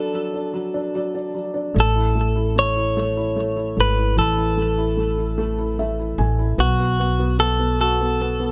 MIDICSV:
0, 0, Header, 1, 4, 480
1, 0, Start_track
1, 0, Tempo, 804613
1, 1052, Time_signature, 6, 3, 24, 8
1, 5081, End_track
2, 0, Start_track
2, 0, Title_t, "Clean electric guitar"
2, 0, Program_c, 0, 27
2, 0, Note_on_c, 0, 69, 72
2, 304, Note_off_c, 0, 69, 0
2, 1075, Note_on_c, 0, 69, 71
2, 1520, Note_off_c, 0, 69, 0
2, 1544, Note_on_c, 0, 73, 87
2, 2268, Note_off_c, 0, 73, 0
2, 2270, Note_on_c, 0, 71, 65
2, 2485, Note_off_c, 0, 71, 0
2, 2497, Note_on_c, 0, 69, 65
2, 3431, Note_off_c, 0, 69, 0
2, 3938, Note_on_c, 0, 66, 78
2, 4392, Note_off_c, 0, 66, 0
2, 4414, Note_on_c, 0, 69, 81
2, 4654, Note_off_c, 0, 69, 0
2, 4661, Note_on_c, 0, 69, 76
2, 5081, Note_off_c, 0, 69, 0
2, 5081, End_track
3, 0, Start_track
3, 0, Title_t, "Felt piano"
3, 0, Program_c, 1, 0
3, 0, Control_c, 1, 64, 127
3, 0, Note_on_c, 1, 54, 47
3, 0, Note_on_c, 1, 62, 46
3, 72, Note_off_c, 1, 54, 0
3, 81, Note_on_c, 1, 54, 42
3, 193, Note_off_c, 1, 62, 0
3, 202, Note_on_c, 1, 62, 40
3, 310, Note_off_c, 1, 54, 0
3, 319, Note_on_c, 1, 54, 57
3, 433, Note_off_c, 1, 62, 0
3, 442, Note_on_c, 1, 62, 46
3, 556, Note_off_c, 1, 54, 0
3, 565, Note_on_c, 1, 54, 43
3, 567, Note_on_c, 1, 74, 56
3, 674, Note_off_c, 1, 62, 0
3, 683, Note_on_c, 1, 62, 45
3, 794, Note_off_c, 1, 54, 0
3, 803, Note_on_c, 1, 54, 42
3, 909, Note_off_c, 1, 62, 0
3, 918, Note_on_c, 1, 62, 43
3, 1026, Note_off_c, 1, 74, 0
3, 1040, Note_off_c, 1, 54, 0
3, 1040, Note_on_c, 1, 57, 56
3, 1041, Note_off_c, 1, 62, 0
3, 1059, Control_c, 1, 64, 0
3, 1167, Note_on_c, 1, 64, 43
3, 1179, Control_c, 1, 64, 127
3, 1276, Note_off_c, 1, 57, 0
3, 1285, Note_on_c, 1, 57, 43
3, 1396, Note_off_c, 1, 64, 0
3, 1405, Note_on_c, 1, 64, 44
3, 1518, Note_off_c, 1, 57, 0
3, 1527, Note_on_c, 1, 57, 43
3, 1639, Note_off_c, 1, 64, 0
3, 1648, Note_on_c, 1, 64, 43
3, 1762, Note_off_c, 1, 57, 0
3, 1771, Note_on_c, 1, 57, 55
3, 1880, Note_off_c, 1, 64, 0
3, 1889, Note_on_c, 1, 64, 49
3, 1997, Note_off_c, 1, 57, 0
3, 2006, Note_on_c, 1, 57, 45
3, 2117, Note_off_c, 1, 64, 0
3, 2126, Note_on_c, 1, 64, 42
3, 2238, Note_off_c, 1, 57, 0
3, 2246, Note_on_c, 1, 57, 44
3, 2358, Note_off_c, 1, 64, 0
3, 2367, Note_on_c, 1, 64, 43
3, 2486, Note_on_c, 1, 52, 57
3, 2601, Note_off_c, 1, 64, 0
3, 2610, Note_on_c, 1, 64, 43
3, 2720, Note_off_c, 1, 57, 0
3, 2729, Note_on_c, 1, 57, 45
3, 2842, Note_off_c, 1, 64, 0
3, 2851, Note_on_c, 1, 64, 48
3, 2957, Note_off_c, 1, 57, 0
3, 2966, Note_on_c, 1, 57, 47
3, 3080, Note_off_c, 1, 64, 0
3, 3089, Note_on_c, 1, 64, 40
3, 3199, Note_off_c, 1, 57, 0
3, 3208, Note_on_c, 1, 57, 58
3, 3322, Note_off_c, 1, 64, 0
3, 3331, Note_on_c, 1, 64, 46
3, 3444, Note_off_c, 1, 57, 0
3, 3453, Note_on_c, 1, 57, 46
3, 3455, Note_on_c, 1, 76, 53
3, 3566, Note_off_c, 1, 64, 0
3, 3575, Note_on_c, 1, 64, 42
3, 3677, Note_off_c, 1, 76, 0
3, 3683, Note_off_c, 1, 57, 0
3, 3689, Note_on_c, 1, 80, 56
3, 3692, Note_on_c, 1, 57, 42
3, 3802, Note_off_c, 1, 64, 0
3, 3811, Note_on_c, 1, 64, 45
3, 3906, Note_off_c, 1, 52, 0
3, 3914, Note_off_c, 1, 80, 0
3, 3925, Note_off_c, 1, 57, 0
3, 3926, Note_on_c, 1, 59, 57
3, 3928, Note_off_c, 1, 64, 0
3, 3941, Control_c, 1, 64, 0
3, 4031, Control_c, 1, 64, 127
3, 4043, Note_off_c, 1, 59, 0
3, 4052, Note_on_c, 1, 59, 45
3, 4163, Note_off_c, 1, 59, 0
3, 4172, Note_on_c, 1, 59, 46
3, 4282, Note_off_c, 1, 59, 0
3, 4291, Note_on_c, 1, 59, 48
3, 4397, Note_off_c, 1, 59, 0
3, 4406, Note_on_c, 1, 59, 47
3, 4521, Note_off_c, 1, 59, 0
3, 4530, Note_on_c, 1, 59, 43
3, 4655, Note_on_c, 1, 66, 58
3, 4769, Note_off_c, 1, 59, 0
3, 4778, Note_on_c, 1, 59, 48
3, 4887, Note_off_c, 1, 59, 0
3, 4896, Note_on_c, 1, 59, 47
3, 5000, Note_off_c, 1, 59, 0
3, 5009, Note_on_c, 1, 59, 46
3, 5081, Note_off_c, 1, 59, 0
3, 5081, Note_off_c, 1, 66, 0
3, 5081, End_track
4, 0, Start_track
4, 0, Title_t, "Upright bass"
4, 0, Program_c, 2, 32
4, 1049, Note_on_c, 2, 33, 85
4, 2227, Note_off_c, 2, 33, 0
4, 2251, Note_on_c, 2, 32, 65
4, 2477, Note_off_c, 2, 32, 0
4, 2489, Note_on_c, 2, 33, 74
4, 3667, Note_off_c, 2, 33, 0
4, 3688, Note_on_c, 2, 33, 77
4, 3916, Note_off_c, 2, 33, 0
4, 3928, Note_on_c, 2, 35, 82
4, 5081, Note_off_c, 2, 35, 0
4, 5081, End_track
0, 0, End_of_file